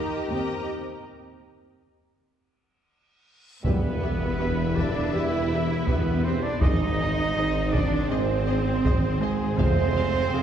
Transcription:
Already playing: D#4 G4 A#4 D#5 A#5
0.29 D#2 C4 G4 A#4 D#5 A#5
0.67 reverse cymbal
3.63 E1 E2 E3 G3 B3 E4 G4 B4 E5, taiko, sub drop
4.00 G4 B4 E5
4.38 E1 E2 G4 B4 E5
4.75 D4 G4 B4 D5 E5, taiko
5.12 E1 E2 E3 G3 B3 E4 G4 B4 E5
5.17 E5
5.50 G4 B4 E5
5.87 E1 E2 B3 G4 B4 E5, taiko
6.24 C4 G4 B4 C5 E5
6.43 D4 D5
6.60 G#1 D#3 G#3 C4 D#4 G#4 C5 D#5, taiko
6.64 D#5
6.98 G#4 C5 D#5
7.36 G#1 G#4 C5 D#5
7.72 D4 G#4 C5 D5 D#5, taiko
8.09 G#1 D#3 G#3 C4 G#4 C5 D#5
8.46 G#4 C5 D#5
8.84 G#1 G#4 C5 D#5, taiko
9.21 G#3 G#4 C5 D#5
9.58 F1 F3 G#3 C4 G#4 C5 F5 G#5, taiko
9.94 G#4 C5 F5
10.32 F1 G#4 C5 F5

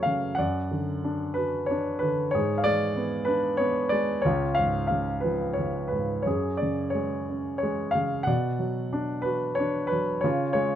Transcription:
Already playing: F#2 C#3 F#3 A3 A4 C#5 D5
0.03 C#3 F5
0.35 F#2 D5 F#5
0.71 D3
1.04 D4
1.34 F#4 B4
1.66 C#5
1.71 D4
1.99 D3 B4
2.31 G#2 G#4 C#5
2.58 F5
2.64 G#3 D5
2.96 B3
3.25 D4 B4
3.57 B3 C#5
3.89 G#3 D5
4.22 C#2 C#5
4.26 F4
4.55 F5
4.59 G#2
4.87 C#3 F5
5.20 F3 B4
5.53 C#5
5.58 C#3
5.88 B4
5.92 G#2
6.22 F#2 C#5
6.27 G#4
6.57 D5
6.62 C#3
6.90 C#5
6.95 G#3
7.29 C#4
7.58 C#5
7.63 G#3
7.91 F5
7.95 C#3
8.23 B2 F#5
8.27 D5
8.59 F#3
8.93 D4
9.22 F#4 B4
9.55 C#5
9.59 D4
9.87 B4
9.92 F#3
10.21 C#3 F4 C#5
10.53 G#3 C#5

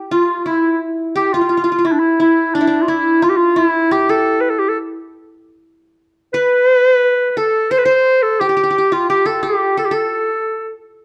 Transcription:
Already playing: G4
0.11 F4
0.39 F4
0.46 E4
1.16 G4
1.33 F4
1.41 F4
1.49 F4
1.57 F4
1.64 F4
1.72 F4
1.79 F4
1.85 E4
1.92 D4
2.00 E4
2.20 E4
2.55 D4
2.61 E4
2.67 D4
2.82 F4
2.88 E4
3.22 F4
3.30 G4
3.37 F4
3.56 E4
3.91 G4
4.09 A4
4.41 B4
4.50 A4
4.59 G4
4.69 A4
6.34 B4
7.30 B4
7.37 A4
7.71 C5
7.78 B4
7.85 C5
8.23 A4
8.40 G4
8.49 G4
8.57 G4
8.64 G4
8.71 G4
8.78 G4
8.92 F4
9.10 G4
9.26 A4
9.43 G4
9.77 A4
9.85 G4
9.91 A4

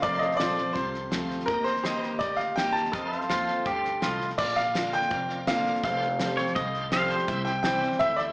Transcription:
0.02 F1 F2 F4 A4 A#4 C5 D5 F5, kick, snare
0.19 D#5, snare
0.24 A4
0.29 C5, snare
0.37 A#1 F3 A3 F4 A4 C5 D5, snare, hi-hat pedal
0.41 C4 F4
0.58 C4 F4, snare
0.73 C2 C3 F4 A4 C5, kick, snare
0.94 snare
1.10 D2 F3 A3 C4 F4 A4 C5, snare, hi-hat pedal
1.30 snare
1.40 snare
1.46 D#2 D#3 G4 A#4 D#5, kick, snare
1.64 C5, snare
1.76 snare
1.84 D#3 A#3 D#4 G4 A#4 C5 D#5, snare, hi-hat pedal
2.03 snare
2.09 A#4
2.19 D2 A#2 G4 A#4 D5 D#5, kick, snare
2.37 F5, snare
2.56 D#2 D#3 A#3 D#4 G4 A#4 F5 G5, snare, hi-hat pedal
2.73 A5, snare
2.85 snare
2.92 F2 A4 A#4 C5 D#5 F5, kick, snare
3.12 snare
3.18 C5 F5, snare
3.28 D#2 F3 A3 C4 F4 A4 C5 F5, snare, hi-hat pedal
3.48 snare
3.65 D2 G2 G4 A4 C5 F5, kick, snare
3.85 snare
4.01 C2 A2 F4 A4 C5 D#5, snare, hi-hat pedal
4.21 snare
4.30 snare
4.37 A#1 A#2 F4 A#4 D5 F5, kick, snare, crash
4.56 F5, snare
4.73 D3 A#3 D4 F4 A#4 D5 F5, snare, hi-hat pedal
4.93 G5, snare
5.02 snare
5.10 F1 F2 F4 A#4 D5 F5, kick, snare
5.28 F4 A#4 D5 F5, snare
5.47 D3 A#3 D4 F4 A#4 D5 F5, snare, hi-hat pedal
5.66 snare
5.75 snare
5.83 F1 F2 G4 A4 C5 F5, kick, snare
6.02 snare
6.19 F3 G3 C4 G4 A4 C5 F5, snare, hi-hat pedal
6.37 C4 G4 C#5, snare
6.47 snare
6.55 C2 A2 G4 A4 C5 D#5 F5, kick, snare
6.74 G4 A4 C5 F5, snare
6.92 F3 G3 C4 G4 A4 C5 F5, snare, hi-hat pedal
7.10 C5, snare
7.19 snare
7.28 C2 C3 E4 G4 C5 E5, kick, snare
7.45 G5, snare
7.63 E3 G3 C4 E4 G4 C5 E5 G5, snare, hi-hat pedal
7.83 snare
7.92 snare
7.99 D2 A2 E4 G4 C5 E5, kick, snare
8.16 E4 G4 C5 D5 E5, snare

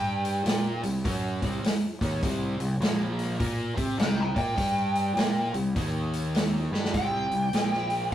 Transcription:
Already playing: G2 G3 D4 G4 G5
0.25 open hi-hat
0.46 A#2 A#3 F4 A#4, snare, open hi-hat
0.83 C2 C3 G3, open hi-hat
1.04 F#2 F#3 C#4 F#4, kick, open hi-hat
1.42 C2 C3 G3 C4, kick, open hi-hat
1.64 muted fingered electric bass stroke, muted distorted electric guitar stroke, snare, open hi-hat
2.01 D#2 D#3 A#3 D#4, kick, open hi-hat
2.22 C2 C3 G3 C4, kick, open hi-hat
2.60 C2 C3 G3, open hi-hat
2.80 A#1 A#2 F3 A#3, snare, open hi-hat
3.19 open hi-hat
3.39 A#2 A#3 F4 A#4, kick, open hi-hat
3.75 C3 C4 G4 C5, kick, open hi-hat
3.98 C2 C3 G3 A#4 G5, snare, open hi-hat
4.20 G5 A#5
4.35 A#2 A#3 F4 A#4, kick, open hi-hat
4.39 G5
4.57 G2 G3 D4 G4, kick, open hi-hat
4.95 open hi-hat
5.16 A#2 A#3 F4 A#4, snare, open hi-hat
5.54 C2 C3 G3, open hi-hat
5.76 D#2 D#3 A#3 D#4, kick, open hi-hat
6.13 open hi-hat
6.34 snare, open hi-hat
6.71 G2 G3 D4 G4, snare
6.85 snare
6.94 C2 C3 G3 C4 G5, kick, open hi-hat
7.31 C2 C3 G3, open hi-hat
7.53 A#1 A#2 F3 A#3, snare, open hi-hat
7.73 snare
7.90 open hi-hat

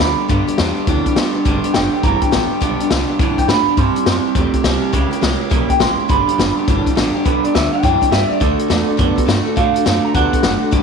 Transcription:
Already playing: B5
0.00 D2 G2 D3 G3 B3 D4 G4
0.18 G3 B3 D4 G4
0.28 G2 D3 G3 B3 D4 G4, kick, closed hi-hat
0.47 G3 B3 D4 G4, muted upright bass stroke, closed hi-hat
0.58 E2 G2 D3 G3 B3 D4 G4, snare, closed hi-hat
0.77 G3 B3 D4 G4, muted upright bass stroke
0.87 D2 G2 D3 E3 G3 B3 D4 G4, kick, closed hi-hat
1.06 G3 B3 D4 G4, muted upright bass stroke, kick, closed hi-hat
1.16 B1 G2 D3 G3 B3 D4 G4, snare, closed hi-hat
1.34 G3 B3 D4 G4, muted upright bass stroke
1.45 G1 G2 D3 G3 B3 D4 G4, kick, closed hi-hat
1.64 G3 B3 D4 G4, muted upright bass stroke, closed hi-hat
1.74 F#1 G2 D3 G3 B3 D4 G4 G5, snare, closed hi-hat
1.93 G3 B3 D4 G4 G5, muted upright bass stroke
2.03 G1 G2 D3 E3 G3 B3 D4 G4 A#5, kick, closed hi-hat
2.21 G3 B3 D4 G4 G5, muted upright bass stroke, kick, closed hi-hat
2.31 A1 G2 D3 G3 B3 D4 G4, snare, closed hi-hat
2.50 G3 B3 D4 G4, muted upright bass stroke
2.60 B1 G2 D3 G3 B3 D4 G4, kick, closed hi-hat
2.80 G3 B3 D4 G4, closed hi-hat
2.90 C2 G2 D3 G3 B3 G4, snare, closed hi-hat
3.09 G3 B3 D4 G4
3.19 D2 G2 D3 E3 G3 B3 D4 G4, kick, closed hi-hat
3.38 G3 B3 D4 G4 G5, kick, closed hi-hat
3.48 G2 A2 D3 G3 B3 D4 G4 B5, snare, closed hi-hat
3.67 G3 B3 D4 G4, muted upright bass stroke
3.77 G2 C3 G3 C4 E4 G4 C6, kick, closed hi-hat
3.95 C4 E4 G4, closed hi-hat
4.06 F#2 C3 G3 C4 E4 G4, snare, closed hi-hat
4.25 C4 E4 G4
4.35 E2 C3 G3 A3 C4 E4 G4, kick, closed hi-hat
4.54 C4 E4 G4, kick, closed hi-hat
4.64 C2 C3 G3 C4 E4 G4, snare, closed hi-hat
4.81 C4 E4 G4
4.93 C#2 C#3 G3 G#3 A#3 E4 G4, kick, closed hi-hat
5.11 A#3 E4 G4, closed hi-hat
5.21 C2 C#3 G3 G#3 A#3 E4 G4, snare, closed hi-hat
5.39 A#3 E4 G4
5.50 A#1 C#3 G3 A#3 E4 G4, kick, closed hi-hat
5.69 A#3 E4 G4 G5, kick, closed hi-hat
5.79 A1 C#3 G3 G#3 A#3 E4 G4 C6, snare, closed hi-hat
5.98 A#3 E4 G4, muted upright bass stroke
6.08 G1 G2 D3 G3 B3 D4 G4 B5, kick, closed hi-hat
6.27 G3 B3 D4 G4, muted upright bass stroke, closed hi-hat
6.38 F#1 G2 D3 G3 B3 G4, snare, closed hi-hat
6.58 G3 B3 D4 G4
6.68 G1 G2 D3 E3 G3 B3 D4 G4, kick, closed hi-hat
6.86 G3 B3 D4 G4, kick, closed hi-hat
6.95 A1 G2 D3 G3 B3 D4 G4, snare, closed hi-hat
7.15 G3 B3 D4 G4, muted upright bass stroke
7.25 B1 G2 D3 G3 B3 D4 G4 B4, kick, closed hi-hat
7.44 G3 B3 D4 G4 D5, closed hi-hat
7.54 D2 G2 D3 G3 B3 D4 G4 E5, snare, closed hi-hat
7.72 G3 B3 D4 G4 G5
7.83 F#2 G2 D3 E3 G3 B3 D4 G4, kick, closed hi-hat
8.01 G3 B3 D4 G4, kick, closed hi-hat
8.11 G2 D3 G3 B3 D4 G4 E5, snare, closed hi-hat
8.29 B3 D4 G4 D5, muted upright bass stroke
8.33 G3
8.39 D2 D3 A3 D4 F#4 A4 D5, kick, closed hi-hat
8.58 D4 F#4 A4, closed hi-hat
8.68 E2 D3 A3 D4 F#4 A4, snare, closed hi-hat
8.87 D4 F#4 A4
8.97 F#2 D3 A3 B3 D4 F#4 A4, kick, closed hi-hat
9.16 D4 F#4 A4, muted upright bass stroke, kick, closed hi-hat
9.25 G2 D3 A3 D4 F#4 A4, snare, closed hi-hat
9.45 D4 F#4 A4, muted upright bass stroke
9.56 A2 D3 A3 D4 F#4 A4 F5, kick, closed hi-hat
9.74 D4 F#4 A4, muted upright bass stroke, closed hi-hat
9.85 F#2 D3 A3 D4 F#4 A4 F5, snare, closed hi-hat
10.03 D4 F#4 A4 A#5, muted upright bass stroke
10.14 D2 D3 A3 B3 D4 F#4 A4 F#5, kick, closed hi-hat
10.33 D4 F#4 A4, kick, closed hi-hat
10.43 F#1 D3 A3 D4 F#4 A4, snare, closed hi-hat
10.61 D4 F#4 A4, muted upright bass stroke
10.71 G1 G2 D3 G3 D4 G4 B4, kick, closed hi-hat

